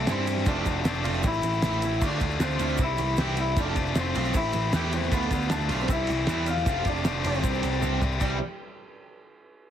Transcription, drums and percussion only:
0.07 snare loud
0.07 ride loud
0.07 shaker medium
0.27 ride medium
0.27 shaker medium
0.37 snare soft
0.46 kick loud
0.46 ride loud
0.46 shaker loud
0.66 kick medium
0.66 ride medium
0.66 shaker medium
0.85 snare loud
0.85 ride loud
0.85 shaker loud
0.94 shaker soft
1.04 ride loud
1.04 shaker medium
1.14 shaker soft
1.23 kick loud
1.23 ride loud
1.23 shaker loud
1.33 shaker soft
1.43 ride medium
1.43 shaker medium
1.53 shaker soft
1.62 snare loud
1.62 ride loud
1.62 shaker loud
1.72 shaker soft
1.82 ride medium
1.82 shaker medium
2.01 kick loud
2.01 crash loud
2.01 shaker loud
2.11 shaker soft
2.20 kick medium
2.20 ride medium
2.20 shaker medium
2.31 shaker soft
2.40 snare loud
2.40 ride loud
2.40 shaker loud
2.51 shaker soft
2.59 ride medium
2.59 shaker medium
2.69 shaker soft
2.78 kick loud
2.78 ride loud
2.78 shaker loud
2.98 ride medium
2.98 shaker medium
3.17 snare loud
3.17 ride loud
3.17 shaker medium
3.37 ride medium
3.37 shaker medium
3.56 kick loud
3.56 ride loud
3.56 shaker loud
3.76 kick medium
3.76 ride medium
3.76 shaker medium
3.86 shaker soft
3.95 snare loud
3.95 ride loud
3.95 shaker loud
4.05 shaker soft
4.15 ride loud
4.15 shaker medium
4.25 shaker soft
4.34 kick loud
4.34 ride loud
4.34 shaker loud
4.53 ride medium
4.53 shaker medium
4.73 snare loud
4.73 ride loud
4.73 shaker medium
4.92 ride medium
4.92 shaker medium
5.02 snare soft
5.12 kick loud
5.12 ride loud
5.12 shaker loud
5.22 shaker soft
5.31 kick medium
5.31 ride medium
5.31 shaker medium
5.42 shaker soft
5.50 snare loud
5.50 ride loud
5.50 shaker loud
5.61 shaker soft
5.69 ride medium
5.69 shaker medium
5.80 shaker soft
5.88 kick loud
5.88 ride loud
5.88 shaker loud
6.07 ride medium
6.07 shaker medium
6.27 snare loud
6.27 ride loud
6.27 shaker medium
6.46 ride medium
6.46 shaker medium
6.57 snare soft
6.66 kick loud
6.66 ride loud
6.66 shaker loud
6.85 kick medium
6.85 ride medium
6.85 shaker medium
6.96 shaker soft
7.05 snare loud
7.05 ride loud
7.05 shaker loud
7.24 ride loud
7.24 shaker medium
7.34 shaker soft
7.44 kick loud
7.44 ride loud
7.44 shaker loud
7.54 shaker soft
7.63 ride medium
7.63 shaker medium
7.73 shaker soft
7.82 high tom medium
7.82 shaker medium
8.02 floor tom loud
8.02 shaker medium
8.12 shaker soft
8.21 kick loud
8.21 crash loud
8.21 shaker medium

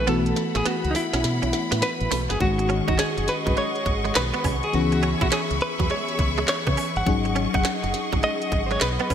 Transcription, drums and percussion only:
0.07 snare medium
0.07 closed hi-hat medium
0.26 closed hi-hat medium
0.36 snare medium
0.36 closed hi-hat medium
0.55 snare medium
0.55 closed hi-hat soft
0.66 snare medium
0.66 closed hi-hat medium
0.85 closed hi-hat medium
0.95 snare medium
0.95 open hi-hat medium
1.13 snare medium
1.13 closed hi-hat medium
1.24 snare medium
1.24 closed hi-hat medium
1.43 closed hi-hat medium
1.53 snare medium
1.53 closed hi-hat medium
1.72 snare medium
1.72 closed hi-hat medium
1.82 snare loud
1.82 closed hi-hat medium
2.01 closed hi-hat soft
2.11 snare loud
2.11 open hi-hat medium
2.30 snare medium
2.30 closed hi-hat soft
2.40 kick loud
2.40 closed hi-hat medium
2.59 closed hi-hat medium
2.70 closed hi-hat medium
2.88 kick loud
2.88 closed hi-hat soft
2.98 snare loud
2.98 clap medium
2.98 closed hi-hat medium
3.18 closed hi-hat medium
3.28 snare medium
3.28 closed hi-hat medium
3.47 kick loud
3.47 closed hi-hat soft
3.57 closed hi-hat medium
3.76 closed hi-hat medium
3.86 kick medium
3.86 closed hi-hat medium
4.05 closed hi-hat soft
4.15 snare loud
4.15 clap loud
4.15 closed hi-hat medium
4.34 closed hi-hat soft
4.44 kick medium
4.44 open hi-hat medium
4.63 closed hi-hat medium
4.73 closed hi-hat medium
4.92 closed hi-hat medium
5.03 closed hi-hat medium
5.21 kick loud
5.21 closed hi-hat medium
5.31 snare loud
5.31 clap medium
5.31 closed hi-hat medium
5.51 closed hi-hat medium
5.61 closed hi-hat medium
5.80 kick medium
5.80 closed hi-hat medium
5.90 closed hi-hat medium
6.08 closed hi-hat medium
6.19 kick medium
6.19 closed hi-hat medium
6.38 closed hi-hat medium
6.47 snare loud
6.47 clap loud
6.47 closed hi-hat medium
6.67 kick medium
6.67 closed hi-hat soft
6.77 open hi-hat medium
6.96 closed hi-hat soft
7.06 kick loud
7.06 closed hi-hat medium
7.25 closed hi-hat medium
7.36 closed hi-hat medium
7.54 kick loud
7.54 closed hi-hat medium
7.64 snare loud
7.64 clap medium
7.64 closed hi-hat medium
7.84 closed hi-hat medium
7.94 snare medium
7.94 closed hi-hat medium
8.13 kick loud
8.13 closed hi-hat medium
8.23 closed hi-hat medium
8.42 closed hi-hat medium
8.52 kick medium
8.52 closed hi-hat medium
8.71 closed hi-hat medium
8.80 snare loud
8.80 clap loud
8.80 closed hi-hat medium
8.99 closed hi-hat soft
9.10 kick medium
9.10 open hi-hat medium

